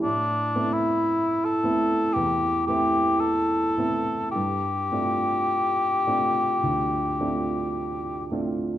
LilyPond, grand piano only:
\new Staff \with { instrumentName = "Grand piano" } { \time 4/4 \key g \mixolydian \tempo 4 = 54 a,8 <a b c' e'>4 <a b c' e'>8 e,8 <a b c' e'>4 <a b c' e'>8 | g,8 <a c' d' f'>4 <a c' d' f'>8 d,8 <a c' d' f'>4 <a c' d' f'>8 | }